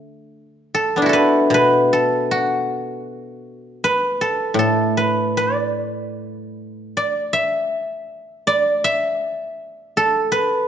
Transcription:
Already playing: D3 D4
0.75 A4
0.96 B3 D4
1.02 E4 F#4
1.09 A4 B4
1.50 B2
1.54 B4
1.93 A4
2.31 F#4
3.84 B4
4.21 A4
4.54 A2
4.59 A4
4.97 B4
5.37 D5
6.97 D5
7.33 E5
8.47 D5
8.84 E5
9.97 A4
10.32 B4

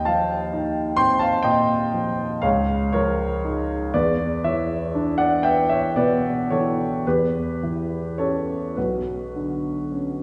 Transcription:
Already playing: D#2 D#5 G5
0.05 F3 F5 A5
0.53 D#4
0.97 C4 G5 C6
1.19 F5 A5
1.43 A#2 D#5 G5
1.93 F3
2.42 C#2 C#5 F5
2.93 F3 A#4 C#5
3.45 D#4 G#4
3.94 E2 B4 D5
4.44 E3 C#5 E5
4.95 D4
5.18 D5 F#5
5.43 B3 E5 G5
5.69 C#5 E5
5.96 B2 B4 D5
6.50 E3 A4 C#5
7.07 E2 G4 B4
7.63 E3
8.18 C#4 G4 A4 C#5
8.77 B1 F#4 B4
9.36 D3
9.92 C#4

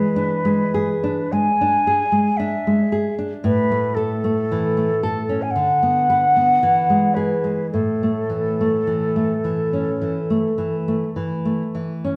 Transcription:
Already playing: E3 G#3 B4
0.16 D4
0.45 G#3
0.74 G#4
1.04 D4
1.32 G#3 G#5
1.61 D4
1.87 G#4
2.12 G#3
2.37 D4 E5
2.67 G#3
2.92 G#4
3.19 D4
3.44 A2 B4
3.71 A3
3.95 A4
4.24 A3
4.52 E3
4.77 A3
5.03 A4
5.29 C#4
5.42 G#5
5.51 F#5
5.56 D3
5.83 B3
6.10 B4
6.36 B3
6.63 E3
6.90 G#3
7.14 G#4 B4
7.44 G#3
7.71 A2 A4
8.03 A3
8.30 E3
8.61 A3
8.87 E3
9.16 A3
9.44 E3
9.73 C#4
10.02 E3
10.30 A3
10.58 E3
10.88 A3
11.16 E3
11.45 A3
11.75 E3
12.04 C#4

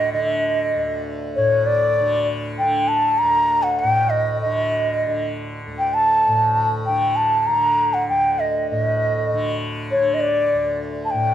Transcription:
Already playing: D2 A2 D3 D#5
0.13 D3 D#5
0.76 D2
1.35 A2 C#5
1.66 D5
2.00 D3
2.58 D3 G5
2.88 A5
3.18 A#5
3.22 D2
3.63 F#5
3.79 G5
3.84 A2
4.09 D#5
4.41 D3 D#5
5.07 D3
5.67 D2
5.78 G5
5.94 A5
6.28 A2
6.85 D3 G5
7.16 A5
7.47 D3 A#5
7.93 F#5
8.09 D2 G5
8.39 D#5
8.70 A2 D#5
9.33 D3
9.91 D3 C#5
10.14 D#5
10.20 D5
10.54 D2
11.05 A5
11.10 A2 G5

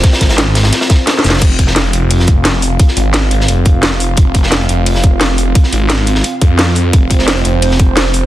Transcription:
Already playing: C4 F4 C5
0.03 kick, snare, closed hi-hat
0.12 snare, closed hi-hat
0.21 G#1, kick, snare, closed hi-hat
0.29 snare, closed hi-hat
0.38 snare, closed hi-hat
0.55 snare, closed hi-hat
0.64 snare, closed hi-hat
0.72 snare, closed hi-hat
0.81 snare, closed hi-hat
0.90 kick, snare, closed hi-hat
1.07 snare, closed hi-hat
1.16 snare, closed hi-hat
1.24 F1, snare, closed hi-hat, open hi-hat
1.29 snare, closed hi-hat
1.33 snare, closed hi-hat
1.37 snare, closed hi-hat
1.42 F1 F5, kick, closed hi-hat, crash
1.59 kick, closed hi-hat
1.67 snare
1.76 snare, closed hi-hat
1.85 closed hi-hat
1.93 F1, closed hi-hat
2.11 closed hi-hat, open hi-hat
2.20 snare
2.27 kick, closed hi-hat
2.45 snare, closed hi-hat
2.62 closed hi-hat, open hi-hat
2.80 kick, closed hi-hat
2.88 snare
2.97 G#1, closed hi-hat
3.13 snare, closed hi-hat
3.31 closed hi-hat
3.41 snare
3.48 F1, closed hi-hat
3.65 kick, closed hi-hat
3.83 F1, snare, closed hi-hat
4.00 closed hi-hat, open hi-hat
4.17 F1, kick, closed hi-hat
4.35 kick, closed hi-hat
4.43 snare
4.51 snare, closed hi-hat
4.61 closed hi-hat
4.69 F1, closed hi-hat
4.86 closed hi-hat, open hi-hat
4.95 snare
5.03 kick, closed hi-hat
5.21 snare, closed hi-hat
5.38 closed hi-hat, open hi-hat
5.55 kick, closed hi-hat
5.64 snare
5.72 G#1, closed hi-hat
5.89 snare, closed hi-hat
6.07 closed hi-hat
6.15 snare
6.24 closed hi-hat
6.42 F2, kick, closed hi-hat
6.59 snare, closed hi-hat
6.75 closed hi-hat, open hi-hat
6.93 F1 C5, kick, closed hi-hat
7.11 kick, closed hi-hat
7.19 snare
7.28 snare, closed hi-hat
7.36 closed hi-hat
7.45 F1, closed hi-hat
7.62 closed hi-hat, open hi-hat
7.71 snare
7.80 kick, closed hi-hat
7.97 snare, closed hi-hat
8.14 closed hi-hat, open hi-hat

